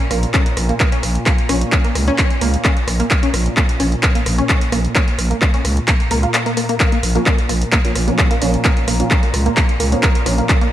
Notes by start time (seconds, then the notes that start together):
Already playing: A#2
0.11 A#1 A#3, cross-stick, open hi-hat
0.23 closed hi-hat
0.34 C#4, kick, cross-stick, clap, closed hi-hat
0.46 closed hi-hat
0.57 A#1, cross-stick, open hi-hat
0.69 A#3, closed hi-hat
0.80 kick, cross-stick, clap, closed hi-hat
0.92 C#4, closed hi-hat
1.03 A#1, cross-stick, open hi-hat
1.15 closed hi-hat
1.26 A#3, kick, cross-stick, clap, closed hi-hat
1.38 closed hi-hat
1.49 A#1 C#4, cross-stick, open hi-hat
1.61 closed hi-hat
1.72 kick, cross-stick, clap
1.85 A#3, closed hi-hat
1.95 C#2, cross-stick, open hi-hat
2.08 C#4, closed hi-hat
2.18 kick, cross-stick, clap, closed hi-hat
2.31 closed hi-hat
2.41 C#2 A#3, cross-stick, open hi-hat
2.54 closed hi-hat
2.65 C#4, kick, cross-stick, clap, closed hi-hat
2.77 closed hi-hat
2.88 A#1, cross-stick, open hi-hat
3.00 A#3, closed hi-hat
3.11 kick, cross-stick, clap, closed hi-hat
3.23 C#4, closed hi-hat
3.34 A#1, cross-stick, open hi-hat
3.46 closed hi-hat
3.57 A#3, kick, cross-stick, clap
3.69 closed hi-hat
3.80 A#1 C#4, cross-stick, open hi-hat
3.92 closed hi-hat
4.03 kick, cross-stick, clap, closed hi-hat
4.15 A#3, closed hi-hat
4.26 A#1, cross-stick, open hi-hat
4.38 C#4, closed hi-hat
4.49 kick, cross-stick, clap, closed hi-hat
4.61 closed hi-hat
4.72 A#1 A#3, cross-stick, open hi-hat
4.85 closed hi-hat
4.95 C#4, kick, cross-stick, clap, closed hi-hat
5.08 closed hi-hat
5.18 A#1, cross-stick, open hi-hat
5.31 A#3, closed hi-hat
5.42 kick, cross-stick, clap, closed hi-hat
5.54 C#4, closed hi-hat
5.65 C#2, cross-stick, open hi-hat
5.77 closed hi-hat
5.88 A#3, kick, cross-stick, clap, closed hi-hat
6.00 closed hi-hat
6.11 C#2 A#3, cross-stick, open hi-hat
6.23 F4, closed hi-hat
6.34 cross-stick, clap, closed hi-hat
6.46 A#3, closed hi-hat
6.57 A#3, cross-stick, open hi-hat
6.69 A#3, closed hi-hat
6.80 A#2, kick, cross-stick, clap, closed hi-hat
6.92 A#3, closed hi-hat
7.03 A#1, cross-stick, open hi-hat
7.15 F3 A#3 C#4, closed hi-hat
7.26 kick, cross-stick, clap
7.39 closed hi-hat
7.49 A#1 A#3, cross-stick, open hi-hat
7.62 closed hi-hat
7.72 A#3, kick, cross-stick, clap, closed hi-hat
7.85 F3 A#3 C#4, closed hi-hat
7.95 A#1, cross-stick, open hi-hat
8.08 F3 A#3 C#4, closed hi-hat
8.19 kick, cross-stick, clap, closed hi-hat
8.31 A#3, closed hi-hat
8.42 A#1 F3 A#3 C#4, cross-stick, open hi-hat
8.54 closed hi-hat
8.65 A#3, kick, cross-stick, clap, closed hi-hat
8.77 closed hi-hat
8.88 A#1 A#3, cross-stick, open hi-hat
9.00 F3 A#3 C#4, closed hi-hat
9.11 kick, cross-stick, clap
9.23 A#3, closed hi-hat
9.34 C#2, cross-stick, open hi-hat
9.46 A#3, closed hi-hat
9.57 kick, cross-stick, clap, closed hi-hat
9.69 closed hi-hat
9.80 C#2 A#3, cross-stick, open hi-hat
9.92 F3 A#3 C#4, closed hi-hat
10.03 A#3, kick, cross-stick, clap, closed hi-hat
10.15 closed hi-hat
10.26 A#1 F3 A#3 C#4, cross-stick, open hi-hat
10.38 A#3, closed hi-hat
10.49 kick, cross-stick, clap, closed hi-hat
10.61 A#3, closed hi-hat